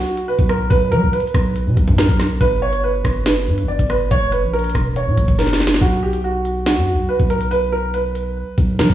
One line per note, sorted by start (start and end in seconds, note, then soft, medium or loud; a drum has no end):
0.00 0.26 F#4 loud
0.17 closed hi-hat medium
0.28 0.46 B4 medium
0.39 0.69 B1 loud
0.39 kick loud
0.39 closed hi-hat medium
0.49 0.67 A#4 medium
0.49 cross-stick medium
0.70 0.93 B1 loud
0.70 0.88 B4 loud
0.70 kick loud
0.70 closed hi-hat medium
0.91 1.04 F#3 loud
0.91 1.09 A#4 medium
0.91 closed hi-hat medium
1.02 1.13 B1 loud
1.13 1.94 B4 medium
1.13 closed hi-hat medium
1.20 closed hi-hat medium
1.27 closed hi-hat soft
1.34 1.68 B1 loud
1.34 kick medium
1.34 cross-stick loud
1.34 closed hi-hat medium
1.56 closed hi-hat medium
1.66 1.76 B2 loud
1.77 1.87 B1 loud
1.77 kick loud
1.77 closed hi-hat medium
1.88 2.08 F#2 loud
1.88 kick loud
1.98 2.38 A#4 medium
1.98 snare loud
2.09 2.40 B1 loud
2.09 kick loud
2.09 closed hi-hat medium
2.20 cross-stick medium
2.20 snare medium
2.41 3.02 G1 loud
2.41 2.58 B4 loud
2.41 kick loud
2.41 closed hi-hat medium
2.62 2.80 C#5 medium
2.73 closed hi-hat medium
2.84 3.24 B4 medium
3.05 3.49 G1 loud
3.05 kick medium
3.05 cross-stick loud
3.05 closed hi-hat medium
3.26 3.66 B4 medium
3.26 snare loud
3.26 closed hi-hat medium
3.47 3.65 G2 loud
3.58 closed hi-hat medium
3.63 3.78 G1 loud
3.68 3.86 D5 medium
3.79 4.10 G1 loud
3.79 kick loud
3.79 closed hi-hat medium
3.90 4.08 B4 medium
3.90 cross-stick medium
4.11 4.44 F#1 loud
4.11 4.29 C#5 loud
4.11 kick loud
4.11 closed hi-hat medium
4.32 4.50 B4 medium
4.32 closed hi-hat medium
4.43 4.73 A#1 loud
4.53 4.93 A#4 medium
4.53 closed hi-hat soft
4.59 closed hi-hat medium
4.64 closed hi-hat medium
4.70 closed hi-hat medium
4.75 5.08 E1 loud
4.75 kick medium
4.75 cross-stick medium
4.75 closed hi-hat medium
4.96 5.36 C#5 medium
4.96 closed hi-hat medium
5.07 5.17 A#2 loud
5.17 5.28 F#1 loud
5.17 kick loud
5.17 closed hi-hat medium
5.28 5.79 F#1 loud
5.28 kick loud
5.39 5.56 A#4 medium
5.39 snare medium
5.46 snare medium
5.46 closed hi-hat medium
5.53 snare medium
5.60 snare medium
5.67 snare loud
5.74 snare loud
5.81 6.78 B1 loud
5.81 5.99 F#4 loud
5.81 kick loud
5.81 closed hi-hat medium
6.03 6.20 G4 medium
6.13 closed hi-hat medium
6.24 6.64 F#4 medium
6.45 closed hi-hat medium
6.66 7.06 F#4 loud
6.66 snare loud
6.66 closed hi-hat medium
6.77 6.95 F#2 loud
6.93 7.08 B1 loud
7.09 7.26 B4 medium
7.20 8.43 B1 loud
7.20 kick medium
7.30 7.48 A#4 medium
7.30 closed hi-hat medium
7.41 closed hi-hat medium
7.51 7.69 B4 loud
7.51 closed hi-hat medium
7.72 7.90 A#4 medium
7.94 8.75 B4 medium
7.94 closed hi-hat medium
8.15 closed hi-hat medium
8.58 8.81 B1 loud
8.58 kick loud
8.58 closed hi-hat medium
8.79 8.89 F#3 medium
8.79 8.94 A#4 medium
8.79 snare loud
8.90 8.94 B1 loud
8.90 kick medium
8.90 closed hi-hat soft